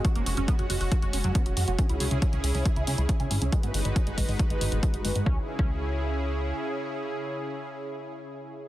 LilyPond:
<<
  \new Staff \with { instrumentName = "Analog synth pad" } { \time 4/4 \key cis \minor \tempo 4 = 138 <gis cis' fis'>1 | <cis e' gis'>1 | <gis dis' fis' b'>1 | <cis cis' e' gis'>1~ |
<cis cis' e' gis'>1 | }
  \new Staff \with { instrumentName = "Acid bass" } { \time 4/4 \key cis \minor fis'16 ais16 fis'16 cis'16 b16 fis'16 fis'16 fis'16 fis'16 fis'16 cis'16 fis16 b16 fis'16 fis'16 fis'16 | cis'16 e'16 fis'16 cis'16 cis'16 cis'16 cis'16 cis'16 e'16 e'16 cis'16 e'16 r16 cis'16 cis'16 cis'16 | gis16 b16 gis16 dis'16 cis'16 gis16 gis16 gis16 gis16 gis16 dis'16 gis,16 cis'16 gis16 gis16 gis16 | cis'16 r8 cis'16 r2. |
r1 | }
  \new Staff \with { instrumentName = "Analog synth bass" } { \clef bass \time 4/4 \key cis \minor r16 fis,,16 fis,,16 fis,,16 r16 fis,,16 fis,,16 fis,,16 r16 fis,,16 fis,,16 fis,,16 r16 fis,,16 fis,16 fis,,16 | r16 cis,16 cis,16 cis,16 r16 cis,16 cis,16 cis,16 r16 cis,16 cis,16 cis,16 r16 cis,16 gis,,16 cis,16 | r16 gis,,16 gis,,16 gis,,16 r16 gis,,16 gis,,16 gis,,16 r16 gis,,16 gis,,16 gis,,16 r16 gis,,16 gis,,16 gis,,16 | cis,16 r8 cis,2~ cis,16 r4 |
r1 | }
  \new DrumStaff \with { instrumentName = "Drums" } \drummode { \time 4/4 <hh bd>16 hh16 hho16 hh16 <hh bd>16 hh16 hho16 hho16 <hh bd>16 hh16 hho16 hh16 <hh bd>16 hh16 hho16 hh16 | <hh bd>16 hh16 hho16 hh16 <hh bd>16 hh16 hho16 hho16 <hh bd>16 hh16 hho16 hh16 <hh bd>16 hh16 hho16 hh16 | <hh bd>16 hh16 hho16 hh16 <hh bd>16 hh16 <hho bd>16 hho16 <hh bd>16 hh16 hho16 hh16 <hh bd>16 hh16 hho16 hh16 | bd8. bd16 r4 r4 r4 |
r4 r4 r4 r4 | }
>>